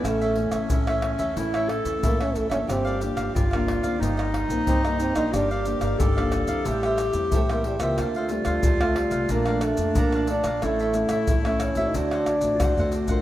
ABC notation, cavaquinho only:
X:1
M:4/4
L:1/16
Q:1/4=91
K:Aphr
V:1 name="Cavaquinho"
[EA^ce] [Ace] z [Ace] [EAce] [Ace]2 [Ace] [EAce] [Ace] z2 [EAce] [Ace] [EAce] [Ace] | [GBdf] [Bdf] z [Bdf] [GBdf] [Bdf]2 [Bdf] [_EGc_e] [Gce] z2 [EGce] [Gce] [EGce] [Gce] | [GBdf] [Bdf] z [Bdf] [GBdf] [df]2 [Bdf] [Aceg] [ceg] z2 [Aceg] [ceg] [Aceg] [ceg] | [DAcf] [Acf] z [Acf] [DAcf] [Acf]2 [Acf] [Adfb] [dfb] z2 [Adfb] [dfb] [Adfb] [dfb] |
[EA^ce] [Ace] z [Ace] [EAce] [Ace]2 [Ace] [DA=c^f] [Acf] z2 [DAcf] [Acf] [DAcf] [Acf] |]